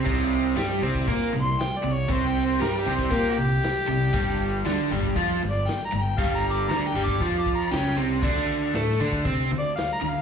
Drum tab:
CC |x---------------|----------------|----------------|----------------|
HH |----o---o---o---|o---o---o---o---|o---o---o---o---|o---o---o---o---|
SD |----o-----o-o---|----o-------o---|----o-------o---|----o-------o---|
BD |o------oo-------|o------oo-------|o------oo-------|o------oo-o-----|

CC |x---------------|
HH |----o---o---o---|
SD |----o-------o---|
BD |o------oo-------|